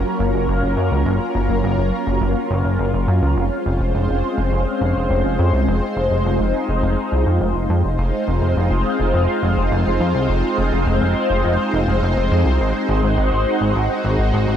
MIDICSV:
0, 0, Header, 1, 3, 480
1, 0, Start_track
1, 0, Tempo, 576923
1, 884, Time_signature, 4, 2, 24, 8
1, 12121, End_track
2, 0, Start_track
2, 0, Title_t, "Analog synth pad"
2, 0, Program_c, 0, 89
2, 0, Note_on_c, 0, 54, 81
2, 0, Note_on_c, 0, 58, 75
2, 0, Note_on_c, 0, 61, 75
2, 0, Note_on_c, 0, 65, 74
2, 0, Note_on_c, 0, 70, 90
2, 2769, Note_off_c, 0, 54, 0
2, 2769, Note_off_c, 0, 58, 0
2, 2769, Note_off_c, 0, 70, 0
2, 2802, Note_on_c, 0, 56, 82
2, 2802, Note_on_c, 0, 60, 70
2, 2802, Note_on_c, 0, 72, 85
2, 4689, Note_off_c, 0, 61, 0
2, 4723, Note_on_c, 0, 63, 74
2, 6609, Note_off_c, 0, 56, 0
2, 6609, Note_off_c, 0, 60, 0
2, 6609, Note_off_c, 0, 65, 0
2, 6609, Note_off_c, 0, 72, 0
2, 6624, Note_off_c, 0, 63, 0
2, 6642, Note_on_c, 0, 63, 77
2, 6642, Note_on_c, 0, 65, 75
2, 6643, Note_on_c, 0, 56, 78
2, 6643, Note_on_c, 0, 60, 74
2, 6643, Note_on_c, 0, 72, 92
2, 10450, Note_off_c, 0, 65, 0
2, 10484, Note_on_c, 0, 66, 76
2, 12121, Note_off_c, 0, 56, 0
2, 12121, Note_off_c, 0, 60, 0
2, 12121, Note_off_c, 0, 63, 0
2, 12121, Note_off_c, 0, 66, 0
2, 12121, Note_off_c, 0, 72, 0
2, 12121, End_track
3, 0, Start_track
3, 0, Title_t, "Analog synth bass"
3, 0, Program_c, 1, 38
3, 161, Note_on_c, 1, 30, 100
3, 271, Note_off_c, 1, 30, 0
3, 281, Note_on_c, 1, 30, 82
3, 391, Note_off_c, 1, 30, 0
3, 401, Note_on_c, 1, 30, 106
3, 511, Note_off_c, 1, 30, 0
3, 522, Note_on_c, 1, 30, 76
3, 631, Note_off_c, 1, 30, 0
3, 642, Note_on_c, 1, 42, 96
3, 751, Note_off_c, 1, 42, 0
3, 762, Note_on_c, 1, 37, 80
3, 871, Note_off_c, 1, 37, 0
3, 883, Note_on_c, 1, 30, 102
3, 991, Note_off_c, 1, 30, 0
3, 1122, Note_on_c, 1, 30, 89
3, 1231, Note_off_c, 1, 30, 0
3, 1242, Note_on_c, 1, 30, 80
3, 1351, Note_off_c, 1, 30, 0
3, 1361, Note_on_c, 1, 30, 101
3, 1471, Note_off_c, 1, 30, 0
3, 1481, Note_on_c, 1, 30, 77
3, 1591, Note_off_c, 1, 30, 0
3, 1722, Note_on_c, 1, 30, 81
3, 1831, Note_off_c, 1, 30, 0
3, 1842, Note_on_c, 1, 30, 100
3, 1951, Note_off_c, 1, 30, 0
3, 2082, Note_on_c, 1, 30, 100
3, 2191, Note_off_c, 1, 30, 0
3, 2202, Note_on_c, 1, 30, 81
3, 2311, Note_off_c, 1, 30, 0
3, 2322, Note_on_c, 1, 30, 104
3, 2431, Note_off_c, 1, 30, 0
3, 2442, Note_on_c, 1, 30, 79
3, 2551, Note_off_c, 1, 30, 0
3, 2562, Note_on_c, 1, 42, 95
3, 2671, Note_off_c, 1, 42, 0
3, 2683, Note_on_c, 1, 37, 83
3, 2791, Note_off_c, 1, 37, 0
3, 2803, Note_on_c, 1, 29, 106
3, 2912, Note_off_c, 1, 29, 0
3, 3043, Note_on_c, 1, 29, 91
3, 3152, Note_off_c, 1, 29, 0
3, 3163, Note_on_c, 1, 29, 75
3, 3272, Note_off_c, 1, 29, 0
3, 3283, Note_on_c, 1, 29, 95
3, 3392, Note_off_c, 1, 29, 0
3, 3402, Note_on_c, 1, 29, 76
3, 3511, Note_off_c, 1, 29, 0
3, 3642, Note_on_c, 1, 29, 80
3, 3751, Note_off_c, 1, 29, 0
3, 3761, Note_on_c, 1, 29, 106
3, 3870, Note_off_c, 1, 29, 0
3, 4002, Note_on_c, 1, 29, 97
3, 4111, Note_off_c, 1, 29, 0
3, 4123, Note_on_c, 1, 29, 80
3, 4231, Note_off_c, 1, 29, 0
3, 4243, Note_on_c, 1, 29, 103
3, 4352, Note_off_c, 1, 29, 0
3, 4363, Note_on_c, 1, 29, 76
3, 4472, Note_off_c, 1, 29, 0
3, 4483, Note_on_c, 1, 41, 96
3, 4592, Note_off_c, 1, 41, 0
3, 4603, Note_on_c, 1, 36, 85
3, 4712, Note_off_c, 1, 36, 0
3, 4722, Note_on_c, 1, 29, 107
3, 4831, Note_off_c, 1, 29, 0
3, 4963, Note_on_c, 1, 29, 90
3, 5071, Note_off_c, 1, 29, 0
3, 5083, Note_on_c, 1, 29, 77
3, 5192, Note_off_c, 1, 29, 0
3, 5203, Note_on_c, 1, 29, 106
3, 5311, Note_off_c, 1, 29, 0
3, 5322, Note_on_c, 1, 29, 74
3, 5431, Note_off_c, 1, 29, 0
3, 5563, Note_on_c, 1, 29, 80
3, 5671, Note_off_c, 1, 29, 0
3, 5683, Note_on_c, 1, 29, 101
3, 5791, Note_off_c, 1, 29, 0
3, 5923, Note_on_c, 1, 36, 98
3, 6032, Note_off_c, 1, 36, 0
3, 6044, Note_on_c, 1, 41, 81
3, 6152, Note_off_c, 1, 41, 0
3, 6163, Note_on_c, 1, 29, 104
3, 6272, Note_off_c, 1, 29, 0
3, 6283, Note_on_c, 1, 29, 77
3, 6392, Note_off_c, 1, 29, 0
3, 6404, Note_on_c, 1, 41, 99
3, 6512, Note_off_c, 1, 41, 0
3, 6523, Note_on_c, 1, 29, 81
3, 6632, Note_off_c, 1, 29, 0
3, 6643, Note_on_c, 1, 29, 107
3, 6752, Note_off_c, 1, 29, 0
3, 6883, Note_on_c, 1, 29, 98
3, 6992, Note_off_c, 1, 29, 0
3, 7003, Note_on_c, 1, 29, 80
3, 7112, Note_off_c, 1, 29, 0
3, 7123, Note_on_c, 1, 29, 100
3, 7231, Note_off_c, 1, 29, 0
3, 7242, Note_on_c, 1, 29, 74
3, 7351, Note_off_c, 1, 29, 0
3, 7484, Note_on_c, 1, 29, 75
3, 7592, Note_off_c, 1, 29, 0
3, 7603, Note_on_c, 1, 29, 103
3, 7712, Note_off_c, 1, 29, 0
3, 7843, Note_on_c, 1, 29, 95
3, 7952, Note_off_c, 1, 29, 0
3, 7963, Note_on_c, 1, 29, 83
3, 8072, Note_off_c, 1, 29, 0
3, 8083, Note_on_c, 1, 29, 107
3, 8192, Note_off_c, 1, 29, 0
3, 8203, Note_on_c, 1, 29, 79
3, 8312, Note_off_c, 1, 29, 0
3, 8323, Note_on_c, 1, 41, 94
3, 8431, Note_off_c, 1, 41, 0
3, 8443, Note_on_c, 1, 36, 81
3, 8552, Note_off_c, 1, 36, 0
3, 8563, Note_on_c, 1, 29, 106
3, 8672, Note_off_c, 1, 29, 0
3, 8804, Note_on_c, 1, 29, 91
3, 8912, Note_off_c, 1, 29, 0
3, 8923, Note_on_c, 1, 29, 84
3, 9032, Note_off_c, 1, 29, 0
3, 9043, Note_on_c, 1, 29, 103
3, 9152, Note_off_c, 1, 29, 0
3, 9164, Note_on_c, 1, 29, 78
3, 9272, Note_off_c, 1, 29, 0
3, 9404, Note_on_c, 1, 29, 81
3, 9512, Note_off_c, 1, 29, 0
3, 9524, Note_on_c, 1, 29, 102
3, 9632, Note_off_c, 1, 29, 0
3, 9764, Note_on_c, 1, 29, 98
3, 9872, Note_off_c, 1, 29, 0
3, 9884, Note_on_c, 1, 29, 78
3, 9992, Note_off_c, 1, 29, 0
3, 10004, Note_on_c, 1, 29, 104
3, 10112, Note_off_c, 1, 29, 0
3, 10124, Note_on_c, 1, 29, 77
3, 10232, Note_off_c, 1, 29, 0
3, 10244, Note_on_c, 1, 41, 97
3, 10352, Note_off_c, 1, 41, 0
3, 10364, Note_on_c, 1, 36, 85
3, 10472, Note_off_c, 1, 36, 0
3, 10483, Note_on_c, 1, 32, 109
3, 10592, Note_off_c, 1, 32, 0
3, 10723, Note_on_c, 1, 32, 97
3, 10832, Note_off_c, 1, 32, 0
3, 10843, Note_on_c, 1, 32, 81
3, 10952, Note_off_c, 1, 32, 0
3, 10964, Note_on_c, 1, 32, 108
3, 11072, Note_off_c, 1, 32, 0
3, 11084, Note_on_c, 1, 32, 75
3, 11192, Note_off_c, 1, 32, 0
3, 11324, Note_on_c, 1, 32, 83
3, 11432, Note_off_c, 1, 32, 0
3, 11443, Note_on_c, 1, 32, 102
3, 11552, Note_off_c, 1, 32, 0
3, 11684, Note_on_c, 1, 32, 95
3, 11792, Note_off_c, 1, 32, 0
3, 11803, Note_on_c, 1, 32, 83
3, 11911, Note_off_c, 1, 32, 0
3, 11923, Note_on_c, 1, 32, 104
3, 12032, Note_off_c, 1, 32, 0
3, 12043, Note_on_c, 1, 32, 80
3, 12121, Note_off_c, 1, 32, 0
3, 12121, End_track
0, 0, End_of_file